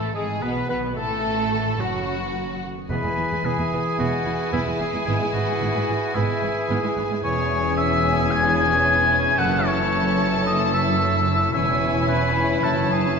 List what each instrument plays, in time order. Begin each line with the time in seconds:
Already playing: double bass section A1, cello section A2, harp E3 G#3 E4 B4 G#5 B5, bassoon A3, french horn section A3, violin section A3 A4, viola section A3, oboe A4, clarinet A4, flute A5
0.14 double bass section G#1, cello section G#2, bassoon G#3, violin section G#3 G#4, viola section G#3, french horn section G#3, harp G#4, oboe G#4, clarinet G#4, flute G#5
0.28 harp B4
0.41 double bass section B1, cello section B2, harp G#3, bassoon B3, viola section B3, french horn section B3, violin section B3 B4, clarinet B4, oboe B4, flute B5
0.56 harp E4
0.69 double bass section B1, cello section B2, harp D#3, bassoon B3, viola section B3, french horn section B3, violin section B3 B4, clarinet B4, oboe B4, flute B5
0.83 harp A3
0.96 double bass section A1, cello section A2, bassoon A3, viola section A3, violin section A3 A4, french horn section A3, harp B3, clarinet A4, oboe A4, flute A5
1.11 harp F#4
1.25 harp B4
1.39 harp F#4
1.53 harp F#5
1.66 harp B5
1.79 double bass section F#1, cello section F#2, french horn section F#3, bassoon F#3, viola section F#3, clarinet F#4, oboe F#4, violin section F#4, flute F#5
1.93 harp B5
2.08 harp F#5
2.21 harp B4
2.35 harp F#4
2.49 harp B3
2.63 harp A3
2.76 harp B3
2.89 double bass section E1, cello section E2, bassoon E3, harp E3, french horn section G#3 B3, viola section B3, violin section E4 G#5, clarinet G#4, oboe B4, flute B5
3.03 cello section E2, viola section G#3
3.17 double bass section E1, cello section E2, viola section E3, harp E4
3.31 cello section E2, viola section G#3, harp G#4
3.43 double bass section E1, cello section E2, bassoon E3, viola section B3, clarinet G#4, oboe G#4, harp B4, flute G#5
3.58 cello section E2, viola section G#3, harp E5
3.72 double bass section E1, cello section E2, viola section E3
3.85 harp B5
3.99 double bass section E1, cello section E2, french horn section G#3 B3, viola section B3, oboe F#4, flute F#5, harp G#5
4.12 harp B5
4.25 double bass section E1, cello section E2, viola section E3, harp G#5
4.39 harp E5
4.52 double bass section E1, cello section E2, bassoon E3, viola section B3, oboe E4, clarinet G#4, harp B4, flute E5
4.65 cello section E2, viola section G#3, harp G#4
4.79 double bass section E1, cello section E2, viola section E3, harp B3, oboe G#4, flute G#5
4.92 cello section E2, viola section G#3, harp E4
5.05 double bass section G#1, harp G#2, cello section G#2, bassoon E3, french horn section G#3 B3, viola section B3, clarinet G#4, oboe G#4, flute G#5
5.19 cello section G#2, harp G#3, viola section G#3
5.33 double bass section G#1, cello section G#2, viola section E3, harp B3, oboe F#4, flute F#5
5.46 cello section G#2, viola section G#3, harp E4
5.60 double bass section G#1, cello section G#2, viola section B3, harp G#4
5.73 cello section G#2, viola section G#3, harp B4
5.87 double bass section G#1, cello section G#2, viola section E3, harp E5
6.01 harp G#5
6.14 double bass section G#1, cello section G#2, bassoon E3, french horn section G#3 B3, viola section B3, oboe E4, clarinet G#4, harp E5, flute E5
6.28 harp G#5
6.42 double bass section G#1, cello section G#2, viola section E3, harp E5
6.56 harp B4
6.69 double bass section G#1, cello section G#2, viola section B3, harp G#4
6.83 cello section G#2, viola section G#3, harp E4
6.96 double bass section G#1, cello section G#2, viola section E3, harp G#3
7.10 cello section G#2, viola section G#3, harp B3
7.23 double bass section E1, harp E2, cello section E2, bassoon E3, french horn section G#3 C#4, viola section C#4, violin section E4 G#5, clarinet G#4, oboe C#5, flute C#6
7.37 harp E3
7.50 harp C#4
7.64 harp E4
7.77 harp G#4, oboe E5, flute E6
7.90 harp C#5
8.03 harp E5
8.17 harp G#5
8.30 harp E5, oboe G#5, flute G#6
8.43 harp G#5
8.58 harp E5, oboe G#5, flute G#6
8.70 harp C#5
8.84 harp G#4
9.11 harp E3
9.25 harp C#4
9.37 double bass section F#1, harp F#2, cello section F#2, french horn section A3 E4, clarinet A4, oboe F#5, violin section A5, flute F#6
9.52 harp C#3
9.65 harp C#4, oboe C#5, flute C#6
9.79 harp E4
9.92 harp A4
10.06 harp C#5
10.19 harp E5
10.46 oboe D#5, harp E5, flute D#6
10.59 harp A5
10.72 harp E5, oboe E5, flute E6
10.86 harp C#5
10.99 harp A4
11.13 harp E4
11.27 harp C#3
11.41 harp C#4
11.54 double bass section E1, harp E2, cello section E2, bassoon E3, french horn section C#4, viola section C#4, violin section E4 G#5, clarinet C#5, oboe E5, flute E6
11.68 harp E3
11.81 harp C#4
12.08 harp G#4, oboe B4, flute B5
12.22 harp C#5
12.36 harp E5
12.50 harp G#5
12.63 double bass section F#1, harp F#2, cello section F#2, oboe A4, flute A5, violin section A5
12.77 harp C#3
12.91 harp C#4, oboe G#4, flute G#5
13.05 harp E4